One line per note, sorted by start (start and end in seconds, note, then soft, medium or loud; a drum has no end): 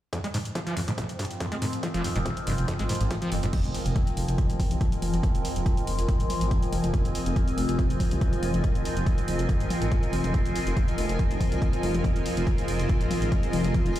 0.13 0.19 F2 medium
0.13 3.52 F3 medium
0.13 3.52 C4 medium
0.13 14.00 F4 medium
0.13 kick loud
0.13 closed hi-hat medium
0.24 0.27 G#3 medium
0.24 14.00 D#5 medium
0.24 closed hi-hat medium
0.32 0.38 G#2 loud
0.32 14.00 G#5 medium
0.32 open hi-hat loud
0.45 14.00 A#4 medium
0.45 closed hi-hat medium
0.55 0.59 F3 loud
0.55 kick loud
0.55 closed hi-hat medium
0.67 0.75 F3 loud
0.67 closed hi-hat medium
0.77 0.80 F2 medium
0.77 open hi-hat loud
0.88 0.91 G#2 medium
0.88 closed hi-hat medium
0.98 1.04 F1 loud
0.98 kick loud
0.98 closed hi-hat medium
1.09 closed hi-hat medium
1.19 1.25 G2 medium
1.19 kick medium
1.19 open hi-hat loud
1.25 closed hi-hat medium
1.31 closed hi-hat medium
1.40 1.47 F2 medium
1.40 kick loud
1.40 closed hi-hat medium
1.52 1.55 G#3 medium
1.52 closed hi-hat medium
1.62 1.65 G#2 loud
1.62 open hi-hat loud
1.73 closed hi-hat medium
1.83 1.87 F3 loud
1.83 kick loud
1.83 closed hi-hat medium
1.94 2.02 F1 medium
1.94 2.03 F3 loud
1.94 closed hi-hat medium
2.04 2.08 F2 medium
2.04 open hi-hat loud
2.16 2.23 F1 medium
2.16 2.19 G#2 medium
2.16 closed hi-hat medium
2.26 2.32 F1 loud
2.26 kick loud
2.26 closed hi-hat medium
2.37 closed hi-hat medium
2.47 2.55 F1 loud
2.47 2.53 G2 medium
2.47 open hi-hat loud
2.58 2.66 F1 medium
2.58 closed hi-hat medium
2.68 2.74 F2 medium
2.68 kick loud
2.68 closed hi-hat medium
2.79 2.87 G#1 medium
2.79 2.83 G#3 medium
2.79 closed hi-hat medium
2.89 2.93 G#2 loud
2.89 open hi-hat loud
2.95 closed hi-hat medium
3.01 3.08 G#1 medium
3.01 closed hi-hat medium
3.11 3.14 F3 loud
3.11 kick loud
3.11 closed hi-hat medium
3.22 3.30 F3 loud
3.22 closed hi-hat medium
3.32 3.40 F1 medium
3.32 3.36 F2 medium
3.32 open hi-hat loud
3.43 3.51 F1 medium
3.43 3.47 G#2 medium
3.43 closed hi-hat medium
3.53 14.00 F3 medium
3.53 14.00 C4 medium
3.53 kick loud
3.53 closed hi-hat medium
3.53 crash medium
3.64 3.72 F1 medium
3.64 closed hi-hat medium
3.74 open hi-hat loud
3.86 3.93 F1 medium
3.86 closed hi-hat medium
3.96 kick loud
3.96 closed hi-hat medium
4.07 closed hi-hat medium
4.17 4.25 F1 medium
4.17 open hi-hat loud
4.28 4.36 F1 medium
4.28 closed hi-hat medium
4.38 kick loud
4.38 closed hi-hat medium
4.49 4.57 F1 medium
4.49 closed hi-hat medium
4.60 kick medium
4.60 open hi-hat loud
4.60 mid tom medium
4.71 4.78 C2 medium
4.71 closed hi-hat medium
4.81 kick loud
4.81 closed hi-hat medium
4.92 closed hi-hat medium
5.02 5.11 F1 loud
5.02 open hi-hat loud
5.02 mid tom medium
5.13 5.21 F1 medium
5.13 closed hi-hat medium
5.13 mid tom medium
5.23 kick loud
5.23 closed hi-hat medium
5.35 5.42 F1 medium
5.35 closed hi-hat medium
5.45 open hi-hat loud
5.56 5.63 F1 medium
5.56 closed hi-hat medium
5.66 kick loud
5.66 closed hi-hat medium
5.77 closed hi-hat medium
5.87 5.96 F1 medium
5.87 open hi-hat loud
5.98 6.06 F1 medium
5.98 closed hi-hat medium
6.09 kick loud
6.09 closed hi-hat medium
6.20 6.27 G#1 medium
6.20 closed hi-hat medium
6.30 open hi-hat loud
6.30 mid tom medium
6.41 6.49 G#1 medium
6.41 closed hi-hat medium
6.51 kick loud
6.51 closed hi-hat medium
6.62 closed hi-hat medium
6.72 6.81 F1 medium
6.72 open hi-hat loud
6.72 mid tom medium
6.84 6.91 F1 medium
6.84 closed hi-hat medium
6.84 mid tom medium
6.94 kick loud
6.94 closed hi-hat medium
7.05 7.12 F1 medium
7.05 closed hi-hat medium
7.15 open hi-hat loud
7.26 7.34 F1 medium
7.26 closed hi-hat medium
7.36 kick loud
7.36 closed hi-hat medium
7.48 closed hi-hat medium
7.57 7.66 F1 medium
7.57 open hi-hat loud
7.69 7.76 F1 medium
7.69 closed hi-hat medium
7.79 kick loud
7.79 closed hi-hat medium
7.90 7.98 F1 medium
7.90 closed hi-hat medium
8.00 kick medium
8.00 open hi-hat loud
8.00 mid tom medium
8.11 8.19 C2 medium
8.11 closed hi-hat medium
8.21 kick loud
8.21 closed hi-hat medium
8.33 closed hi-hat medium
8.43 8.51 F1 medium
8.43 open hi-hat loud
8.43 mid tom medium
8.54 8.61 F1 medium
8.54 closed hi-hat medium
8.54 mid tom medium
8.64 kick loud
8.64 closed hi-hat medium
8.75 8.83 F1 medium
8.75 closed hi-hat medium
8.85 open hi-hat loud
8.96 9.04 F1 medium
8.96 closed hi-hat medium
9.06 kick loud
9.06 closed hi-hat medium
9.18 closed hi-hat medium
9.28 9.36 F1 medium
9.28 open hi-hat loud
9.39 9.47 F1 medium
9.39 closed hi-hat medium
9.49 kick loud
9.49 closed hi-hat medium
9.60 9.68 G#1 medium
9.60 closed hi-hat medium
9.70 open hi-hat loud
9.70 mid tom medium
9.81 9.89 G#1 medium
9.81 closed hi-hat medium
9.92 kick loud
9.92 closed hi-hat medium
10.03 closed hi-hat medium
10.13 10.21 F1 loud
10.13 open hi-hat loud
10.13 mid tom medium
10.24 10.32 F1 medium
10.24 closed hi-hat medium
10.24 mid tom medium
10.34 kick loud
10.34 closed hi-hat medium
10.45 10.53 F1 medium
10.45 closed hi-hat medium
10.56 open hi-hat loud
10.66 10.74 F1 medium
10.66 closed hi-hat medium
10.77 kick loud
10.77 closed hi-hat medium
10.88 closed hi-hat medium
10.98 11.06 F1 loud
10.98 open hi-hat loud
11.09 11.17 F1 medium
11.09 closed hi-hat medium
11.19 kick loud
11.19 closed hi-hat medium
11.30 11.38 F1 medium
11.30 closed hi-hat medium
11.40 kick medium
11.40 open hi-hat loud
11.40 mid tom medium
11.52 11.59 C2 medium
11.52 closed hi-hat medium
11.62 kick loud
11.62 closed hi-hat medium
11.73 closed hi-hat medium
11.83 11.91 F1 medium
11.83 open hi-hat loud
11.83 mid tom medium
11.94 12.02 F1 medium
11.94 closed hi-hat medium
11.94 mid tom medium
12.04 kick loud
12.04 closed hi-hat medium
12.15 12.23 F1 medium
12.15 closed hi-hat medium
12.26 open hi-hat loud
12.37 12.44 F1 medium
12.37 closed hi-hat medium
12.47 kick loud
12.47 closed hi-hat medium
12.58 closed hi-hat medium
12.68 12.77 F1 medium
12.68 open hi-hat loud
12.79 12.87 F1 medium
12.79 closed hi-hat medium
12.89 kick loud
12.89 closed hi-hat medium
13.01 13.08 G#1 medium
13.01 closed hi-hat medium
13.11 open hi-hat loud
13.11 mid tom medium
13.22 13.29 G#1 medium
13.22 closed hi-hat medium
13.32 kick loud
13.32 closed hi-hat medium
13.43 closed hi-hat medium
13.53 13.62 F1 medium
13.53 open hi-hat loud
13.53 mid tom medium
13.64 13.72 F1 medium
13.64 closed hi-hat medium
13.64 mid tom medium
13.74 kick loud
13.74 closed hi-hat medium
13.86 13.93 F1 medium
13.86 closed hi-hat medium
13.96 open hi-hat loud